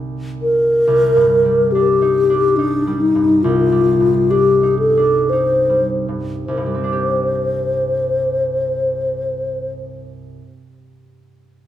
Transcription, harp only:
0.00 0.86 C2 soft
0.00 1.44 G3 soft
0.00 2.11 A#3 soft
0.00 2.11 C4 soft
0.00 2.01 D#4 soft
0.00 2.13 G4 soft
0.00 1.69 A#4 soft
0.00 2.12 C5 medium
0.87 3.43 C2 soft
1.16 3.14 G2 soft
1.45 2.86 G3 soft
1.75 2.29 D4 soft
2.02 2.57 D#4 soft
2.30 4.29 D4 soft
2.59 4.62 D#4 soft
2.87 3.71 G3 soft
3.15 3.99 G2 soft
3.44 6.47 C2 soft
3.72 5.68 G3 soft
4.00 6.07 G2 soft
4.30 4.96 D4 soft
4.63 5.31 D#4 soft
4.97 6.82 D4 soft
5.32 9.22 D#4 soft
5.69 6.65 G3 soft
6.08 6.52 G2 soft
6.48 10.38 C2 soft
6.57 10.47 G2 soft
6.66 10.23 G3 soft
6.74 10.00 C4 soft
6.84 10.09 D4 soft
6.92 10.18 G4 soft

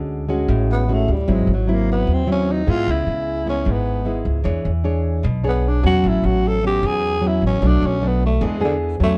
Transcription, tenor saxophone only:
0.72 0.95 B3 medium
0.94 1.13 A3 medium
1.11 1.35 G3 medium
1.34 1.51 G#3 medium
1.54 1.75 F#3 medium
1.73 1.90 A#3 medium
1.92 2.15 B3 medium
2.13 2.30 C4 medium
2.32 2.53 C#4 medium
2.52 2.71 D#4 medium
2.70 2.93 F4 loud
2.91 3.49 E4 medium
3.49 3.73 C#4 medium
3.71 4.28 B3 medium
5.48 5.70 B3 medium
5.68 5.86 D4 medium
5.86 6.10 F#4 loud
6.09 6.27 E4 medium
6.26 6.49 F#4 medium
6.48 6.65 A4 loud
6.67 6.88 G4 loud
6.87 7.29 G#4 loud
7.27 7.45 E4 medium
7.47 7.70 C#4 medium
7.68 7.88 D4 medium
7.86 8.09 C#4 medium
8.07 8.24 B3 medium
8.26 8.48 A3 medium
8.46 8.64 G#3 medium
8.64 8.75 D3 medium
9.03 9.18 A3 medium

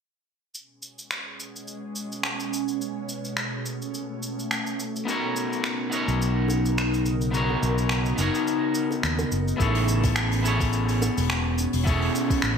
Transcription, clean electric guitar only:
5.05 5.88 B3 medium
5.05 5.89 D#4 medium
5.05 5.89 F#4 medium
5.05 5.90 A#4 medium
5.10 5.91 C#5 medium
5.90 7.29 B3 medium
5.90 7.30 D#4 medium
5.90 7.31 F#4 medium
5.90 7.31 A#4 medium
5.95 7.32 C#5 medium
7.31 8.14 B3 medium
7.31 8.15 D#4 medium
7.31 8.16 F#4 medium
7.31 8.16 A#4 medium
7.37 8.17 C#5 medium
8.16 9.56 B3 medium
8.16 9.56 D#4 medium
8.16 9.57 F#4 medium
8.20 9.58 A#4 medium
8.20 9.58 C#5 medium
9.57 10.40 B3 medium
9.57 10.41 E4 medium
9.57 10.42 G#4 medium
9.57 10.42 A4 medium
9.62 10.43 C#5 medium
10.42 11.82 B3 medium
10.42 11.83 E4 medium
10.42 11.83 G#4 medium
10.42 11.84 A4 medium
10.48 11.85 C#5 medium
11.84 12.58 B3 medium
11.84 12.58 E4 medium
11.84 12.58 G#4 medium
11.84 12.58 A4 medium
11.89 12.58 C#5 medium

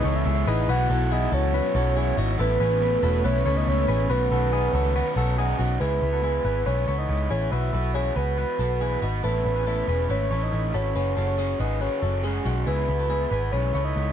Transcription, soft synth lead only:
0.00 0.17 D#5 loud
0.16 0.47 E5 loud
0.48 0.71 D#5 loud
0.70 1.13 F#5 loud
1.12 1.35 D#5 loud
1.34 2.18 C#5 loud
2.40 3.21 B4 loud
3.25 3.58 C#5 loud
3.57 3.69 D#5 loud
3.68 4.10 C#5 loud
4.10 5.34 B4 medium
5.80 6.62 B4 medium
6.66 6.96 C#5 medium
6.98 7.32 D#5 loud
7.30 7.52 C#5 medium
7.51 7.95 E5 loud
7.94 8.17 C#5 medium
8.16 9.02 B4 medium
9.24 10.06 B4 medium
10.10 10.44 C#5 medium
10.43 10.76 D#5 loud
10.74 11.27 C#5 medium
11.27 11.61 C#5 medium
11.60 11.82 D#5 medium
11.81 12.23 C#5 medium
12.24 12.54 G#4 medium
12.67 13.49 B4 medium
13.52 13.82 C#5 medium
13.85 14.12 D#5 loud

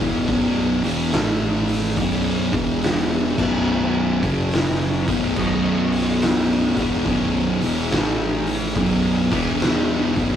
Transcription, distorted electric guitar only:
0.00 0.28 E2 medium
0.00 0.28 B2 loud
0.00 0.28 E3 loud
0.28 0.83 B1 medium
0.28 0.83 F#2 loud
0.28 0.83 B2 loud
0.83 1.12 E2 medium
0.83 1.12 B2 loud
0.83 1.12 E3 medium
1.13 1.96 A2 medium
1.13 1.97 E3 medium
1.13 1.97 A3 loud
1.97 2.51 B1 loud
1.97 2.52 F#2 loud
1.97 2.51 B2 loud
2.52 3.36 E2 loud
2.52 3.36 B2 loud
2.52 3.37 E3 loud
3.37 4.21 B1 medium
3.37 4.21 F#2 medium
3.37 4.21 B2 loud
4.22 5.06 F#2 medium
4.22 5.06 C#3 loud
4.22 5.07 F#3 loud
5.07 5.35 B1 medium
5.07 5.36 F#2 medium
5.07 5.36 B2 loud
5.36 6.75 B1 loud
5.36 6.76 F#2 loud
5.36 6.76 B2 loud
6.78 7.06 E2 medium
6.78 7.06 B2 medium
6.78 7.06 E3 loud
7.06 7.60 B1 medium
7.06 7.60 F#2 loud
7.06 7.61 B2 loud
7.63 7.91 E2 medium
7.63 7.91 B2 loud
7.63 7.91 E3 loud
7.91 8.75 A2 loud
7.91 8.76 E3 medium
7.91 8.76 A3 loud
8.75 9.31 B1 loud
8.75 9.32 F#2 loud
8.75 9.32 B2 loud
9.31 10.14 E2 medium
9.31 10.15 B2 medium
9.31 10.15 E3 loud
10.16 10.36 B1 medium
10.16 10.36 F#2 loud
10.16 10.36 B2 loud

